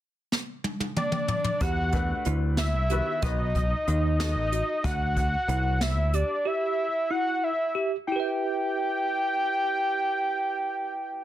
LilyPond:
<<
  \new Staff \with { instrumentName = "Analog synth lead" } { \time 5/8 \key e \minor \tempo 4 = 93 r4. d''4 | fis''4 r8 e''4 | dis''4. dis''4 | fis''4. e''8 d''8 |
e''4 fis''8 e''8. r16 | g''2~ g''8~ | g''2~ g''8 | }
  \new Staff \with { instrumentName = "Tine electric piano" } { \time 5/8 \key e \minor r2 r8 | g'4 e'4 g'8 | fis'4 dis'4 fis'8 | fis'4 e'4 g'8 |
g'4 e'4 g'8 | <e' g' b' e''>2~ <e' g' b' e''>8~ | <e' g' b' e''>2~ <e' g' b' e''>8 | }
  \new Staff \with { instrumentName = "Grand piano" } { \time 5/8 \key e \minor r2 r8 | r8 <a d' g' b'>4. <dis b fis' b'>8 | <b dis' fis' b'>8 r4 <b dis' fis' a'>8 r8 | r2 r8 |
r2 r8 | r2 r8 | r2 r8 | }
  \new Staff \with { instrumentName = "Picked electric bass" } { \clef bass \time 5/8 \key e \minor r2 r8 | e,4 d,8. c,8 r16 | b,,4 dis,8. a,,8 r16 | d,4 c,8. d,8 r16 |
r2 r8 | r2 r8 | r2 r8 | }
  \new DrumStaff \with { instrumentName = "Drums" } \drummode { \time 5/8 r8 sn8 tommh16 tommh16 toml16 toml16 tomfh16 tomfh16 | <hh bd>8 <hh bd>8 hh8 <hh sn>8 hh8 | <hh bd>8 <hh bd>8 hh8 <hh sn>8 hh8 | <hh bd>8 <hh bd>8 hh8 <hh sn>8 hh8 |
r4. r4 | r4. r4 | r4. r4 | }
>>